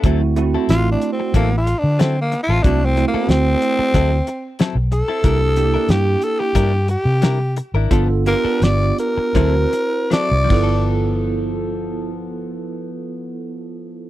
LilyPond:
<<
  \new Staff \with { instrumentName = "Tenor saxophone" } { \time 4/4 \key g \mixolydian \tempo 4 = 90 r4 \tuplet 3/2 { f'8 d'8 c'8 bes8 f'8 d'8 c'8 bes8 f'8 } | \tuplet 3/2 { d'8 c'8 bes8 } c'2 r8 a'8~ | a'4 g'8 a'16 g'8. g'4 r8 | r8 bes'8 d''8 bes'4. d''4 |
r1 | }
  \new Staff \with { instrumentName = "Clean electric guitar" } { \time 4/4 \key g \mixolydian <fis c' e' a'>16 r8 <c' e' a'>16 r4 <fis c' e' a'>16 r8. <fis c' e' a'>16 r8 <c' e' a'>16 | <fis c' e' a'>16 r8 <c' e' a'>16 r4 <fis c' e' a'>16 r8. <fis c' e' a'>16 r8 <c' e' a'>16 | <g d' e' bes'>16 r8 <d' e' bes'>16 r4 <g d' e' bes'>16 r8. <g d' e' bes'>16 r8 <d' e' bes'>16 | <f b d' a'>16 r8 <b d' a'>16 r4 <fis c' e' a'>16 r8. <fis c' e' a'>16 r16 <f b a'>8~ |
<f b a'>1 | }
  \new Staff \with { instrumentName = "Tine electric piano" } { \time 4/4 \key g \mixolydian <a c' e' fis'>8 <a c' e' fis'>2 r4. | <a c' e' fis'>8 <a c' e' fis'>2 r4. | <bes d' e' g'>8 <bes d' e' g'>2 r4. | <b d' f' a'>8 <b d' f' g'>4. <c' e' fis' c''>4. <b e' f' a'>8~ |
<b e' f' a'>1 | }
  \new Staff \with { instrumentName = "Fingered electric bass" } { \clef bass \time 4/4 \key g \mixolydian d,4 a,,8 r8 a,,8. d4 a,,16 | c,8. r16 d,8 r8 d,8 r8. b,,8 r16 | c,4 g,8 r8 g,8. c4 aes,,16 | g,,8. r16 g,,8 r8 d,8 r8. c,16 g,,8~ |
g,,1 | }
  \new DrumStaff \with { instrumentName = "Drums" } \drummode { \time 4/4 <hh bd>8 hh8 <hh sn>8 hh8 <hh bd>8 hh8 <hh sn>8 hh8 | <hh bd>8 hh8 <hh sn>8 hh8 <hh bd>8 hh8 <hh sn>8 hh8 | <hh bd>8 hh8 <hh sn>8 hh8 <hh bd>8 hh8 <hh sn>8 hh8 | <hh bd>8 hh8 <hh sn>8 hh8 <hh bd>8 hh8 <hh sn>8 <cymc bd>8 |
r4 r4 r4 r4 | }
>>